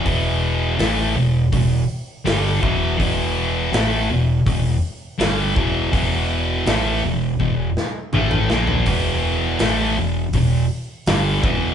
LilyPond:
<<
  \new Staff \with { instrumentName = "Distorted electric guitar" } { \clef bass \time 4/4 \key e \minor \tempo 4 = 82 <e, b, e>4 <a, e a>8 <e, b,>8 <e, b,>8 r8 <g, d g>8 <e, b, e>8 | <e, b, e>4 <a, e a>8 <e, b,>8 <e, b,>8 r8 <g, d g>8 <e, b, e>8 | <e, b, e>4 <a, e a>8 <e, b,>8 <e, b,>8 r8 <a, e a>8 <ais, f ais>8 | <e, b, e>4 <a, e a>8 <e, b,>8 <e, b,>8 r8 <g, d g>8 <e, b, e>8 | }
  \new Staff \with { instrumentName = "Fingered electric bass" } { \clef bass \time 4/4 \key e \minor e,,4 a,,8 e,,8 e,,8 r8 g,,8 e,,8 | e,,4 a,,8 e,,8 e,,8 r8 g,,8 e,,8 | e,,4 a,,8 e,,8 e,,8 r8 a,,8 ais,,8 | e,,4 a,,8 e,,8 e,,8 r8 g,,8 e,,8 | }
  \new DrumStaff \with { instrumentName = "Drums" } \drummode { \time 4/4 <hho bd>4 <hho sn>4 <hho bd>4 <hho sn>8 bd8 | <hho bd>4 <hho sn>4 <hho bd>4 <hho sn>8 bd8 | <hho bd>4 <hho sn>4 bd8 sn8 toml16 toml16 sn16 tomfh16 | <hho bd>4 <hho sn>4 <hho bd>4 <hho sn>8 bd8 | }
>>